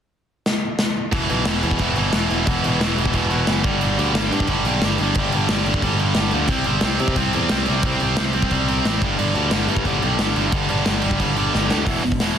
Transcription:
0.46 snare
0.79 snare
1.12 picked electric bass E1, distorted electric guitar E2 B2 E3, kick, crash
1.29 picked electric bass B1, distorted electric guitar E2 B2 E3, crash
1.45 picked electric bass E1, distorted electric guitar E2 B2 E3, snare, crash
1.63 picked electric bass E2, distorted electric guitar E2 B2 E3, crash
1.71 kick
1.79 picked electric bass E1, distorted electric guitar E2 B2 E3, kick, crash
1.96 picked electric bass G1, distorted electric guitar E2 B2 E3, crash
2.13 picked electric bass E1, distorted electric guitar E2 B2 E3, snare, crash
2.30 picked electric bass E1, distorted electric guitar E2 B2 E3, crash
2.47 picked electric bass E1, distorted electric guitar E2 B2 E3, kick, crash
2.63 picked electric bass E1, distorted electric guitar E2 B2 E3, crash
2.80 picked electric bass E1, distorted electric guitar E2 B2 E3, snare, crash
2.97 picked electric bass E1, distorted electric guitar E2 B2 E3, crash
3.06 kick
3.13 picked electric bass E1, distorted electric guitar E2 B2 E3, kick, crash
3.30 distorted electric guitar E2 B2 E3, crash
3.47 picked electric bass F#1, distorted electric guitar E2 B2 E3, snare, crash
3.64 picked electric bass G1, distorted electric guitar G2 D3 G3, kick, crash
3.80 picked electric bass G1, distorted electric guitar G2 D3 G3, crash
3.97 picked electric bass D2, distorted electric guitar G2 D3 G3, crash
4.14 picked electric bass G1, distorted electric guitar G2 D3 G3, snare, crash
4.31 picked electric bass G2, distorted electric guitar G2 D3 G3, crash
4.40 kick
4.47 picked electric bass G1, distorted electric guitar G2 D3 G3, kick, crash
4.65 picked electric bass B1, distorted electric guitar G2 D3 G3, crash
4.82 picked electric bass G1, distorted electric guitar G2 D3 G3, snare, crash
4.98 picked electric bass G1, distorted electric guitar G2 D3 G3, crash
5.14 picked electric bass G1, distorted electric guitar G3, kick, crash
5.19 distorted electric guitar G2 D3
5.32 picked electric bass G1, distorted electric guitar G2 D3 G3, crash
5.49 picked electric bass G1, distorted electric guitar G2 D3 G3, snare, crash
5.65 picked electric bass G1, distorted electric guitar G2 D3 G3, crash
5.74 kick
5.82 picked electric bass G1, distorted electric guitar G2 D3 G3, kick, crash
5.99 distorted electric guitar G2 D3 G3, crash
6.15 picked electric bass G1, distorted electric guitar G2 D3 G3, snare, crash
6.31 picked electric bass D2, distorted electric guitar G2 D3 G3, crash
6.48 picked electric bass C2, distorted electric guitar C3 G3 C4, kick, crash
6.64 picked electric bass G1, distorted electric guitar C3 G3 C4, crash
6.81 picked electric bass C2, distorted electric guitar C3 G3 C4, snare, crash
6.99 picked electric bass C3, distorted electric guitar C3 G3 C4, crash
7.08 kick
7.16 picked electric bass C2, distorted electric guitar C3 G3 C4, kick, crash
7.33 picked electric bass E2, distorted electric guitar C3 G3 C4, crash
7.49 picked electric bass C2, distorted electric guitar C3 G3 C4, snare, crash
7.66 picked electric bass C2, distorted electric guitar C3 G3 C4, crash
7.83 picked electric bass C2, distorted electric guitar C3 G3 C4, kick, crash
8.00 picked electric bass C2, distorted electric guitar C3 G3 C4, crash
8.17 picked electric bass C2, distorted electric guitar C3 G3 C4, snare, crash
8.33 picked electric bass C2, distorted electric guitar C3 G3 C4, crash
8.42 kick
8.51 picked electric bass C2, distorted electric guitar C3 G3 C4, kick, crash
8.68 distorted electric guitar C3 G3 C4, crash
8.85 picked electric bass A1, distorted electric guitar C3 G3 C4, snare, crash
9.02 picked electric bass G1, distorted electric guitar G2 D3 G3, kick, crash
9.18 picked electric bass G1, distorted electric guitar G2 D3 G3, crash
9.34 picked electric bass D2, distorted electric guitar G2 D3 G3, crash
9.51 picked electric bass G1, distorted electric guitar G2 D3 G3, snare, crash
9.68 picked electric bass G2, distorted electric guitar G2 D3 G3, crash
9.77 kick
9.85 picked electric bass G1, distorted electric guitar G2 D3 G3, kick, crash
10.02 picked electric bass B1, distorted electric guitar G2 D3 G3, crash
10.18 picked electric bass G1, distorted electric guitar G2 D3 G3, snare, crash
10.36 picked electric bass G1, distorted electric guitar G2 D3 G3, crash
10.52 picked electric bass G1, distorted electric guitar G2 D3 G3, kick, crash
10.69 picked electric bass G1, distorted electric guitar G2 D3 G3, crash
10.85 picked electric bass G1, distorted electric guitar G2 D3 G3, snare, crash
11.02 picked electric bass G1, distorted electric guitar G2 D3 G3, crash
11.11 kick
11.20 picked electric bass G1, distorted electric guitar G2 D3 G3, kick, crash
11.36 distorted electric guitar G2 D3 G3, crash
11.54 picked electric bass G1, distorted electric guitar G2 D3 G3, snare
11.70 picked electric bass D2, distorted electric guitar G2 D3 G3, snare
11.84 picked electric bass E1, distorted electric guitar E2 B2 E3, kick, open hi-hat
12.03 picked electric bass E1, distorted electric guitar E2 B2
12.12 kick
12.20 picked electric bass E1, distorted electric guitar E2 B2 E3, snare, open hi-hat

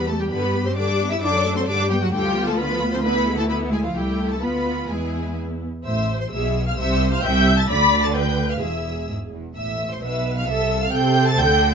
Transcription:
Already playing: double bass section E2, viola section G4
0.08 cello section A3, viola section B3, violin section A4 A5
0.20 cello section G3, viola section G3, violin section G4 G5
0.31 double bass section G2, viola section D3, cello section B3, violin section B4 B5
0.43 viola section G3
0.55 viola section B3
0.66 viola section G3, cello section C4, violin section C5 C6
0.76 viola section D3, cello section D4, violin section D5 D6
0.89 viola section G3
1.00 viola section B3
1.11 viola section G3, cello section E4, violin section E5 E6
1.22 double bass section F#2, viola section D3 A4, cello section D4, violin section D5 D6
1.34 viola section F#3
1.45 viola section A3
1.56 viola section F#3, cello section C4, violin section C5 C6
1.67 double bass section G2, viola section D3 G4, cello section D4, violin section D5 D6
1.80 viola section G3
1.90 cello section G3, viola section B3, violin section G4 G5
2.01 cello section F#3, viola section G3, violin section F#4 F#5
2.13 double bass section D2, viola section D3 F4, cello section G3, violin section G4 G5
2.26 viola section F3
2.37 viola section B3
2.47 viola section F3, cello section A3, violin section A4 A5
2.59 viola section D3, cello section B3, violin section B4 B5
2.71 viola section F3
2.83 viola section B3
2.93 viola section F3, cello section C4, violin section C5 C6
3.04 viola section D3 E4, cello section B3, violin section B4 B5
3.15 viola section E3
3.27 viola section G#3
3.37 viola section E3, cello section A3, violin section A4 A5
3.48 viola section D3, cello section B3, violin section B4 B5
3.61 viola section E3
3.72 viola section G#3, cello section G#3, violin section G#4 G#5
3.83 viola section E3, cello section F3, violin section F4 F5
3.95 double bass section C2, cello section G3, viola section A3 E4, violin section G4 G5
4.30 cello section A3, violin section A4 A5
4.41 double bass section D2, viola section B3 F4, cello section B3, violin section B4 B5
4.89 double bass section E2, cello section G#3, viola section B3 E4, violin section G#4 G#5
5.85 double bass section A1, cello section A2, viola section C5, violin section E5 E6
6.20 violin section C5 C6
6.31 double bass section B1, cello section B2, viola section G#4, violin section E5 E6
6.67 violin section F5 F6
6.78 double bass section C2, cello section C3, viola section C5, violin section E5 E6
7.13 violin section F5 F6
7.22 double bass section C2, cello section C3, viola section E5, violin section G5 G6
7.57 violin section A5 A6
7.68 double bass section D2, cello section D3, viola section D5, violin section B5 B6
8.03 violin section A5 A6
8.14 viola section B4, violin section G5 G6
8.49 violin section F5 F6
8.61 double bass section E1, cello section E2, viola section G#4, violin section E5 E6
9.08 cello section G#2
9.33 cello section E2
9.55 double bass section A1, cello section A2, violin section E5 E6
9.91 violin section C5 C6
10.02 double bass section B1, cello section B2, viola section B4, violin section E5 E6
10.36 violin section F5 F6
10.48 double bass section C2, cello section C3, viola section A4, violin section E5 E6
10.82 violin section F5 F6
10.93 double bass section C3, cello section C4, viola section A4, violin section G5 G6
11.27 violin section A5 A6
11.39 double bass section D2, cello section D3, violin section G5 G6

